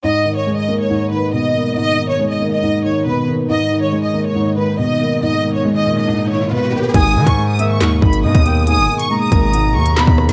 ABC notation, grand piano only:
X:1
M:4/4
L:1/8
Q:1/4=139
K:G#m
V:1 name="Grand piano" clef=bass
G,, D, G, A, G,, D, B,, A, | G,, D, G, A, G,, D, B,, A, | G,, D, G, A, G,, D, B,, A, | G,, D, G, A,, G,, D, B,, A, |
G,, D, G, A, G,, D, B,, A, | G,, D, G, A, G,, D, B,, A, |]